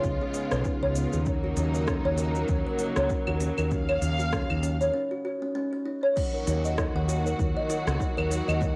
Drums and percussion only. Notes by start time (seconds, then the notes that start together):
0.04 kick, shaker
0.34 open hi-hat, shaker
0.52 cross-stick, shaker
0.65 kick, shaker
0.95 open hi-hat, shaker
1.13 shaker
1.26 kick, shaker
1.57 open hi-hat, shaker
1.74 shaker
1.87 kick, cross-stick, shaker
2.18 open hi-hat, shaker
2.35 shaker
2.48 kick, shaker
2.79 open hi-hat, shaker
2.96 cross-stick, shaker
3.10 kick, shaker
3.27 claves
3.40 open hi-hat, shaker
3.58 claves, shaker
3.71 kick, shaker
3.89 claves
4.02 open hi-hat, shaker
4.20 shaker
4.33 kick, cross-stick, shaker
4.50 claves
4.63 open hi-hat, shaker
4.81 shaker
6.17 kick, crash, shaker
6.47 open hi-hat, shaker
6.65 shaker
6.78 kick, cross-stick, shaker
7.09 open hi-hat, shaker
7.26 shaker
7.39 kick, shaker
7.70 open hi-hat, shaker
7.87 cross-stick, shaker
8.01 kick, shaker
8.18 claves
8.31 open hi-hat, shaker
8.49 claves, shaker
8.62 kick, shaker